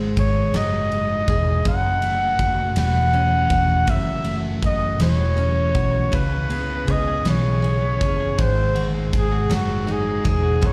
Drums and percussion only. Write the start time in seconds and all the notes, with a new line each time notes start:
0.17 kick, ride
0.54 snare, ride
0.92 ride
1.28 kick, ride
1.65 kick, ride
2.02 ride
2.39 kick, ride
2.76 snare, ride
3.14 ride
3.50 kick, ride
3.87 kick, ride
4.24 ride
4.63 kick, ride
5.00 snare, ride
5.38 ride
5.75 kick, ride
6.13 kick, ride
6.50 ride
6.88 kick, ride
7.25 snare, ride
7.64 ride
8.01 kick, ride
8.39 kick, ride
8.76 ride
9.13 kick, ride
9.51 snare, ride
9.88 ride
10.25 kick, ride
10.62 kick, ride